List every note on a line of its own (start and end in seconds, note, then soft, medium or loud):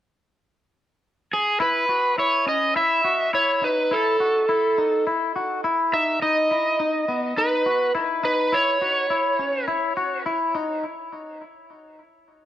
1.33 1.61 G#4 medium
1.60 1.88 E4 loud
1.60 2.15 B4 medium
1.89 2.17 F#4 medium
2.18 2.47 E4 medium
2.18 2.48 C#5 medium
2.46 2.76 C#4 medium
2.46 2.77 D#5 loud
2.76 3.04 E4 medium
2.76 3.30 E5 loud
3.04 3.33 F#4 medium
3.34 3.62 E4 medium
3.34 3.64 C#5 medium
3.62 3.91 D#4 medium
3.62 3.93 B4 medium
3.91 4.20 E4 medium
3.91 5.04 A4 medium
4.20 4.48 F#4 medium
4.49 4.78 E4 medium
4.78 5.07 D#4 medium
5.07 5.35 E4 medium
5.36 5.64 F#4 medium
5.64 5.93 E4 medium
5.93 6.21 D#4 medium
5.93 6.22 E5 loud
6.22 6.51 D#4 loud
6.22 7.41 D#5 loud
6.51 6.80 E4 medium
6.80 7.08 D#4 medium
7.08 7.37 B3 medium
7.37 7.66 D#4 medium
7.37 7.92 B4 medium
7.66 7.94 F#4 medium
7.95 8.24 E4 medium
8.23 8.53 D#4 medium
8.23 8.54 B4 loud
8.52 8.81 E4 loud
8.52 9.65 C#5 loud
8.82 9.10 F#4 medium
9.10 9.39 E4 medium
9.39 9.68 C#4 medium
9.68 9.96 E4 medium
9.97 10.26 F#4 medium
10.26 10.55 E4 medium
10.55 10.84 D#4 medium